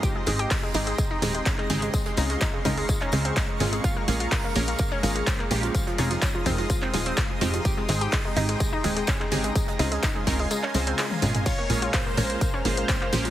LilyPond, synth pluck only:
\new Staff \with { instrumentName = "Synth pluck" } { \time 4/4 \key des \lydian \tempo 4 = 126 r8 <aes, aes c' ees' g' aes'>4 <aes, aes c' ees' g' aes'>16 r8. <aes, aes c' ees' g' aes'>4 <des aes c' ees' g' aes'>16 r16 | r8 <des aes c' des' f' aes'>4 <des aes c' des' f' bes'>16 r8. <des aes c' des' f' c''>8 r8 <bes, aes c' des' f' aes'>16 r16 | r8 <bes, aes bes des' f' aes'>4 <bes, aes bes des' f' bes'>16 r8. <bes, aes bes des' f' aes'>4 <aes bes des' f' g'>16 r16 | r8 <aes c' ees' f' aes'>4 <aes c' ees' f' bes'>16 r8. <aes c' ees' f' aes'>4 <aes, aes c' ees' f' g'>16 r16 |
r8 <aes, aes c' ees' g' aes'>4 <aes, aes c' ees' g' aes'>16 r8. <aes, aes c' ees' g' aes'>4 <des aes c' ees' g' aes'>16 r16 | r8 <des aes c' des' f' aes'>4 <des aes c' des' f' bes'>16 r8. <des aes c' des' f' c''>8 r8 <bes, aes c' des' f' aes'>16 r16 | r8 <bes, aes bes des' f' aes'>4 <bes, aes bes des' f' bes'>16 r8. <bes, aes bes des' f' aes'>4 <aes bes des' f' g'>16 r16 | }